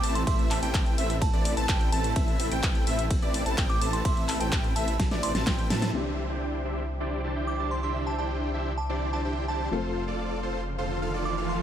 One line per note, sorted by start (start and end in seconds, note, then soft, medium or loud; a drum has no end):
0.00 0.25 A1 loud
0.00 5.90 A3 medium
0.00 5.90 C4 medium
0.00 0.24 C4 medium
0.00 5.90 E4 medium
0.00 0.24 E4 medium
0.00 5.90 A4 medium
0.00 0.24 A4 medium
0.00 0.24 B4 medium
0.00 0.24 A5 loud
0.00 0.12 D6 loud
0.00 open hi-hat loud
0.15 0.23 C6 medium
0.15 closed hi-hat medium
0.27 0.60 A1 loud
0.27 0.60 C4 loud
0.27 0.60 E4 medium
0.27 0.60 A4 medium
0.27 0.60 B4 medium
0.27 0.60 E5 loud
0.27 0.35 C6 medium
0.27 kick loud
0.27 closed hi-hat medium
0.27 ride medium
0.39 closed hi-hat soft
0.51 0.58 A5 medium
0.51 clap medium
0.51 open hi-hat loud
0.63 0.96 A1 loud
0.63 0.95 C4 loud
0.63 0.95 E4 medium
0.63 0.95 A4 medium
0.63 0.95 B4 medium
0.63 0.95 G5 loud
0.63 0.70 A5 medium
0.63 closed hi-hat medium
0.74 kick loud
0.74 clap loud
0.74 closed hi-hat medium
0.74 ride medium
0.86 closed hi-hat soft
0.98 1.31 A1 loud
0.98 1.16 C4 loud
0.98 1.16 E4 medium
0.98 1.16 A4 medium
0.98 1.16 B4 medium
0.98 1.16 E5 loud
0.98 open hi-hat loud
1.10 closed hi-hat medium
1.22 1.41 A5 medium
1.22 kick loud
1.22 closed hi-hat medium
1.22 ride medium
1.33 1.55 A1 loud
1.33 1.54 C4 medium
1.33 1.54 E4 medium
1.33 1.54 A4 medium
1.33 1.54 B4 medium
1.33 1.54 D5 loud
1.33 closed hi-hat soft
1.45 open hi-hat loud
1.57 1.67 A1 medium
1.57 1.67 C4 loud
1.57 1.67 E4 medium
1.57 1.67 A4 medium
1.57 1.67 B4 medium
1.57 1.90 A5 loud
1.57 1.67 A5 loud
1.57 closed hi-hat medium
1.69 1.90 A1 medium
1.69 1.90 C4 loud
1.69 1.90 E4 medium
1.69 1.90 A4 medium
1.69 1.90 B4 medium
1.69 1.90 G5 loud
1.69 kick loud
1.69 clap loud
1.69 closed hi-hat medium
1.69 ride medium
1.81 closed hi-hat soft
1.92 2.14 A1 loud
1.92 2.13 C4 medium
1.92 2.13 E4 medium
1.92 2.13 A4 medium
1.92 2.13 B4 medium
1.92 2.13 A5 loud
1.92 2.13 A5 medium
1.92 2.28 A5 loud
1.92 open hi-hat loud
2.04 closed hi-hat medium
2.16 2.49 A1 loud
2.16 2.49 C4 loud
2.16 2.49 E4 medium
2.16 2.49 A4 medium
2.16 2.49 B4 medium
2.16 2.49 E5 loud
2.16 kick loud
2.16 closed hi-hat medium
2.16 ride medium
2.28 closed hi-hat soft
2.40 open hi-hat loud
2.52 2.85 A1 loud
2.52 2.84 C4 loud
2.52 2.84 E4 medium
2.52 2.84 A4 medium
2.52 2.84 B4 medium
2.52 2.84 G5 loud
2.52 closed hi-hat medium
2.63 kick loud
2.63 clap loud
2.63 closed hi-hat medium
2.63 ride medium
2.75 closed hi-hat soft
2.87 3.20 A1 medium
2.87 3.05 C4 medium
2.87 3.05 E4 medium
2.87 3.05 A4 medium
2.87 3.05 B4 medium
2.87 3.05 E5 loud
2.87 open hi-hat loud
2.99 closed hi-hat medium
3.11 kick loud
3.11 closed hi-hat medium
3.11 ride medium
3.22 3.44 A1 loud
3.22 3.43 C4 loud
3.22 3.43 E4 medium
3.22 3.43 A4 medium
3.22 3.43 B4 medium
3.22 3.43 D5 loud
3.22 closed hi-hat soft
3.34 open hi-hat loud
3.46 3.55 A1 medium
3.46 3.56 C4 loud
3.46 3.56 E4 medium
3.46 3.56 A4 medium
3.46 3.56 B4 medium
3.46 3.56 A5 loud
3.46 closed hi-hat medium
3.58 3.79 A1 medium
3.58 3.79 C4 loud
3.58 3.79 E4 medium
3.58 3.79 A4 medium
3.58 3.79 B4 medium
3.58 3.79 G5 loud
3.58 kick loud
3.58 clap loud
3.58 closed hi-hat medium
3.58 ride medium
3.70 3.89 D6 loud
3.70 closed hi-hat soft
3.81 4.03 A1 loud
3.81 4.02 C4 medium
3.81 4.02 E4 medium
3.81 4.02 A4 medium
3.81 4.02 B4 medium
3.81 4.02 A5 loud
3.81 open hi-hat loud
3.93 4.01 C6 medium
3.93 closed hi-hat medium
4.05 4.38 A1 medium
4.05 4.38 C4 medium
4.05 4.38 E4 medium
4.05 4.38 A4 medium
4.05 4.38 B4 medium
4.05 4.38 E5 loud
4.05 4.13 C6 medium
4.05 kick loud
4.05 closed hi-hat medium
4.05 ride medium
4.17 closed hi-hat soft
4.29 4.36 A5 medium
4.29 clap medium
4.29 open hi-hat loud
4.40 4.74 A1 loud
4.40 4.73 C4 loud
4.40 4.73 E4 medium
4.40 4.73 A4 medium
4.40 4.73 B4 medium
4.40 4.73 G5 loud
4.40 4.48 A5 medium
4.40 closed hi-hat medium
4.52 kick loud
4.52 clap loud
4.52 closed hi-hat medium
4.52 ride medium
4.64 closed hi-hat soft
4.76 5.09 A1 medium
4.76 4.94 C4 medium
4.76 4.94 E4 medium
4.76 4.94 A4 medium
4.76 4.94 B4 medium
4.76 4.94 E5 loud
4.76 4.96 A5 medium
4.76 open hi-hat loud
4.88 closed hi-hat medium
5.00 kick loud
5.00 snare medium
5.00 closed hi-hat medium
5.00 ride medium
5.11 5.33 A1 medium
5.11 5.32 C4 medium
5.11 5.32 E4 medium
5.11 5.32 A4 medium
5.11 5.32 B4 medium
5.11 5.32 D5 loud
5.11 snare medium
5.11 closed hi-hat soft
5.23 5.70 C6 loud
5.23 open hi-hat loud
5.35 5.44 A1 loud
5.35 5.45 C4 loud
5.35 5.45 E4 medium
5.35 5.45 A4 medium
5.35 5.45 B4 medium
5.35 5.45 A5 loud
5.35 snare medium
5.35 closed hi-hat medium
5.47 5.68 A1 medium
5.47 5.68 C4 loud
5.47 5.68 E4 medium
5.47 5.68 A4 medium
5.47 5.68 B4 loud
5.47 5.68 G5 loud
5.47 kick loud
5.47 snare medium
5.47 clap loud
5.47 closed hi-hat medium
5.47 ride medium
5.59 closed hi-hat soft
5.70 5.92 A2 loud
5.70 5.91 C4 medium
5.70 5.91 E4 medium
5.70 5.91 A4 medium
5.70 5.91 B4 medium
5.70 5.91 A5 loud
5.70 snare loud
5.70 open hi-hat loud
5.82 snare medium
5.82 closed hi-hat medium
5.93 9.70 C2 medium
5.93 9.69 E3 medium
5.93 9.69 C4 medium
5.93 6.27 D4 medium
5.93 9.69 D4 medium
5.93 6.27 E4 medium
5.93 6.27 G4 medium
5.93 9.70 G4 medium
5.93 11.62 C5 medium
5.93 6.27 C5 medium
5.93 9.68 E5 medium
5.93 6.27 E5 loud
5.93 9.68 G5 medium
5.93 9.68 D6 medium
6.29 6.62 D4 medium
6.29 6.62 E4 medium
6.29 6.62 G4 medium
6.29 6.62 C5 medium
6.29 6.62 G5 loud
6.65 6.83 D4 medium
6.65 6.83 E4 medium
6.65 6.83 G4 medium
6.65 6.83 C5 medium
6.65 6.83 E5 loud
7.00 7.21 D4 medium
7.00 7.21 E4 medium
7.00 7.21 G4 medium
7.00 7.21 C5 medium
7.00 7.21 D5 medium
7.24 7.34 D4 loud
7.24 7.34 E4 medium
7.24 7.34 G4 medium
7.24 7.34 C5 medium
7.24 7.34 A5 loud
7.36 7.57 D4 medium
7.36 7.57 E4 medium
7.36 7.57 G4 medium
7.36 7.57 C5 medium
7.36 7.57 G5 loud
7.47 7.67 D6 medium
7.59 7.80 D4 medium
7.59 7.80 E4 medium
7.59 7.80 G4 medium
7.59 7.80 C5 medium
7.59 7.80 A5 medium
7.71 7.79 C6 medium
7.83 8.16 D4 medium
7.83 8.16 E4 medium
7.83 8.16 G4 medium
7.83 8.16 C5 medium
7.83 8.16 E5 loud
7.83 7.91 C6 medium
8.07 8.14 A5 medium
8.18 8.51 D4 medium
8.18 8.51 E4 medium
8.18 8.51 G4 medium
8.18 8.51 C5 medium
8.18 8.51 G5 loud
8.18 8.26 A5 medium
8.54 8.72 D4 medium
8.54 8.72 E4 medium
8.54 8.72 G4 medium
8.54 8.72 C5 medium
8.54 8.72 E5 loud
8.78 8.97 A5 medium
8.89 9.10 D4 medium
8.89 9.10 E4 medium
8.89 9.10 G4 medium
8.89 9.10 C5 medium
8.89 9.10 D5 loud
9.13 9.23 D4 loud
9.13 9.23 E4 medium
9.13 9.23 G4 medium
9.13 9.23 C5 medium
9.13 9.23 A5 loud
9.13 9.46 A5 medium
9.25 9.46 D4 loud
9.25 9.46 E4 medium
9.25 9.46 G4 medium
9.25 9.46 C5 medium
9.25 9.46 G5 loud
9.48 9.69 D4 medium
9.48 9.69 E4 medium
9.48 9.69 G4 medium
9.48 9.69 C5 medium
9.48 9.77 A5 medium
9.48 9.69 A5 medium
9.71 11.62 F1 medium
9.71 11.62 F3 medium
9.71 11.62 A3 medium
9.71 11.62 C4 medium
9.71 10.05 F4 medium
9.71 11.62 A4 medium
9.71 10.05 A4 medium
9.71 11.62 A4 medium
9.71 10.05 C5 medium
9.71 11.62 F5 medium
9.71 11.59 C6 medium
9.71 riser medium
10.07 10.40 F4 medium
10.07 10.40 A4 medium
10.07 10.40 D5 loud
10.43 10.61 F4 medium
10.43 10.61 A4 medium
10.43 10.61 C5 loud
10.78 10.99 F4 medium
10.78 10.99 A4 medium
10.78 10.99 C5 loud
11.02 11.12 F4 medium
11.02 11.12 A4 medium
11.02 11.12 F5 loud
11.14 11.34 F4 loud
11.14 11.34 A4 medium
11.14 11.34 D5 loud
11.25 11.45 D6 medium
11.37 11.58 F4 medium
11.37 11.58 A4 medium
11.37 11.58 F5 loud
11.49 11.57 C6 medium